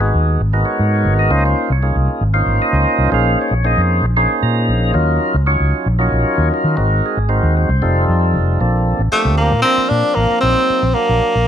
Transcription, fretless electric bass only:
0.00 0.11 G#1 medium
0.14 0.36 D#2 medium
0.40 0.62 G#1 medium
0.79 1.06 G#2 medium
1.05 1.27 G#1 medium
1.30 1.53 C#2 loud
1.70 1.92 C2 loud
1.96 2.07 C2 medium
2.21 2.44 G#1 medium
2.46 2.58 G#1 medium
2.60 muted fretless electric bass stroke soft
2.73 2.85 C#2 medium
2.98 3.10 C2 medium
3.12 3.35 A#1 loud
3.51 3.74 A#1 medium
3.77 4.00 F2 medium
4.02 4.25 A#1 medium
4.43 4.70 A#2 medium
4.69 4.91 A#1 loud
4.95 5.17 D#2 loud
5.34 5.57 C#2 loud
5.60 5.72 C#2 medium
5.86 6.09 A#1 medium
6.12 6.23 A#1 medium
6.38 6.49 D#2 loud
6.64 6.76 D#3 medium
6.78 7.00 G#1 loud
7.17 7.39 G#1 medium
7.43 7.65 D#2 medium
7.69 7.80 C2 loud
7.82 8.04 F1 loud
8.08 8.36 F2 medium
8.34 8.56 F1 medium
8.61 8.94 A#1 medium
8.99 9.10 A1 medium
9.25 9.53 D2 medium
9.51 9.62 A#2 medium
9.78 muted fretless electric bass stroke soft
9.91 10.02 A#2 medium
10.17 10.28 A1 medium
10.43 10.54 A#1 medium
10.70 muted fretless electric bass stroke soft
10.83 10.93 A#1 medium
11.09 11.20 A#1 medium
11.35 11.46 A#1 medium

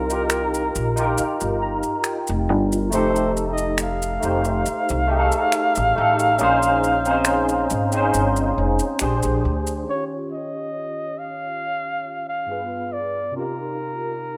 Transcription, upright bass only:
0.00 0.71 C2 loud
0.76 1.14 A#1 medium
1.20 muted upright bass stroke medium
1.42 1.81 G1 medium
2.29 2.49 F1 medium
2.49 2.93 G1 medium
2.93 4.18 F1 loud
4.23 4.62 F1 medium
4.67 muted upright bass stroke medium
4.90 5.29 C2 medium
5.77 5.95 A1 medium
5.98 6.40 A1 medium
6.40 7.66 A#1 loud
7.71 8.10 G#1 medium
8.14 8.53 G1 medium
8.58 8.78 F1 medium
9.02 9.22 A#1 medium
9.25 9.42 A#1 medium
9.45 9.84 D2 medium

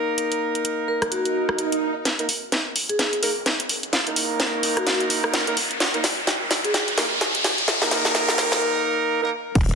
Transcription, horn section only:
0.00 2.03 A#3 medium
0.00 2.03 D#4 medium
0.00 2.03 A#4 medium
2.19 2.27 A#3 medium
2.19 2.27 D#4 medium
2.19 2.27 A#4 medium
3.23 3.29 A#3 medium
3.23 3.29 D#4 medium
3.23 3.29 A#4 medium
4.07 5.44 A#3 loud
4.07 5.44 D#4 medium
4.07 5.44 A#4 loud
5.47 5.55 A#3 medium
5.47 5.55 D#4 medium
5.47 5.55 A#4 medium
5.94 6.02 A#3 medium
5.94 6.02 D#4 medium
5.94 6.02 A#4 medium
6.98 7.04 A#3 medium
6.98 7.04 D#4 medium
6.98 7.04 A#4 loud
7.82 9.19 A#3 loud
7.82 9.19 D#4 loud
7.82 9.19 A#4 loud
9.22 9.30 A#3 loud
9.22 9.30 D#4 medium
9.22 9.30 A#4 loud

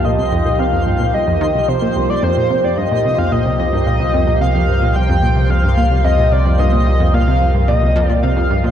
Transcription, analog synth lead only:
0.05 0.61 D#5 loud
0.59 1.16 F5 loud
1.14 1.70 D#5 loud
1.69 2.11 C5 loud
2.10 2.23 D5 loud
2.23 2.66 C5 loud
2.64 2.79 D5 medium
2.78 3.20 D#5 medium
3.19 3.34 F5 loud
3.32 3.59 D#5 loud
3.59 4.37 D#5 loud
4.41 4.97 F5 loud
4.96 5.52 G5 loud
5.50 6.06 F5 loud
6.04 6.34 D#5 loud
6.32 6.59 D5 medium
6.59 7.15 D#5 loud
7.14 7.68 F5 loud
7.68 8.05 D#5 medium
8.05 8.19 D5 medium
8.23 8.71 F5 loud

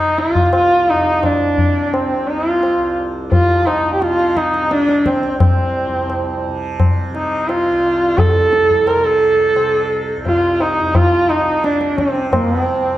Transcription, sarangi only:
0.00 0.20 D#4 medium
0.19 0.53 F4 medium
0.54 0.91 F4 medium
0.89 1.26 D#4 medium
1.25 1.86 D4 medium
1.86 1.95 D4 medium
1.93 2.30 C4 medium
2.28 2.49 D#4 medium
2.49 2.97 F4 medium
3.31 3.68 F4 medium
3.66 3.93 D#4 medium
3.93 4.03 G4 medium
4.01 4.38 F4 medium
4.37 4.73 D#4 medium
4.72 5.08 D4 medium
5.06 5.41 C4 medium
5.42 6.41 C4 medium
7.15 7.50 D#4 medium
7.49 8.20 F4 medium
8.18 8.88 A4 medium
8.87 9.06 A#4 medium
9.04 10.08 A4 medium
10.26 10.62 F4 medium
10.61 10.97 D#4 medium
10.95 11.31 F4 medium
11.29 11.65 D#4 medium
11.64 12.00 D4 medium
11.99 12.32 C4 medium
12.33 12.51 A#3 medium
12.51 12.63 B3 medium
12.63 12.98 C4 medium

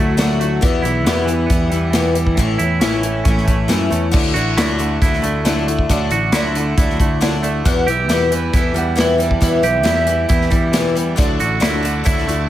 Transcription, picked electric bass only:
0.00 0.58 D2 medium
0.63 0.83 E2 medium
0.84 1.06 B1 medium
1.06 1.46 E2 medium
1.50 1.70 E2 loud
1.72 2.34 E2 medium
2.37 2.58 A1 loud
2.59 2.81 E2 medium
2.81 3.22 A1 medium
3.26 3.46 A1 loud
3.47 3.68 A1 medium
3.69 3.89 F#2 medium
3.91 4.11 E2 medium
4.14 4.34 D2 medium
4.35 4.57 A1 medium
4.57 4.97 D2 loud
5.02 5.22 D2 loud
5.22 5.85 D2 medium
5.90 6.09 D2 loud
6.10 6.32 A1 medium
6.32 6.73 D2 medium
6.78 6.98 D2 medium
7.00 7.61 D2 medium
7.65 7.85 E2 medium
7.87 8.09 B1 medium
8.09 8.49 E2 medium
8.54 8.74 E2 loud
8.74 9.37 E2 medium
9.42 9.62 E2 medium
9.62 9.84 B1 medium
9.84 10.25 E2 medium
10.30 10.50 E2 loud
10.51 11.13 E2 medium
11.18 11.38 D2 medium
11.40 11.62 A1 medium
11.62 12.02 D2 medium
12.06 12.26 D2 loud
12.28 12.49 D2 medium

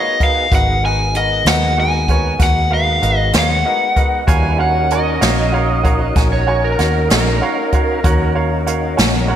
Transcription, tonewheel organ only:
0.00 0.48 B3 medium
0.00 0.48 D#4 medium
0.00 0.47 F#4 medium
0.00 0.48 G#4 medium
0.50 4.23 G#3 medium
0.50 4.24 B3 medium
0.50 4.23 D#4 medium
0.50 4.24 F#4 medium
4.27 4.59 G3 medium
4.27 4.59 D4 medium
4.27 4.59 E4 medium
4.27 4.59 B4 medium
4.59 8.01 C#4 medium
4.59 8.01 D#4 medium
4.59 8.01 F#4 medium
4.59 8.01 A#4 medium
8.03 9.36 C#4 medium
8.03 9.36 D#4 medium
8.03 9.36 F#4 medium
8.03 9.36 A#4 medium

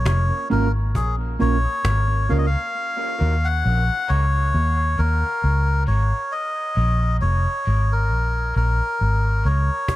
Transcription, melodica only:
0.07 0.48 C#5 loud
0.52 0.72 A#4 medium
0.96 1.16 G#4 medium
1.41 2.32 C#5 loud
2.30 2.38 F5 loud
2.38 2.46 D#5 medium
2.46 3.48 F5 loud
3.45 4.10 F#5 loud
4.09 5.01 C#5 loud
4.99 5.83 A#4 loud
5.88 6.33 C#5 medium
6.32 7.17 D#5 medium
7.21 7.93 C#5 loud
7.92 8.55 A#4 medium
8.56 9.47 A#4 loud
9.45 9.96 C#5 medium

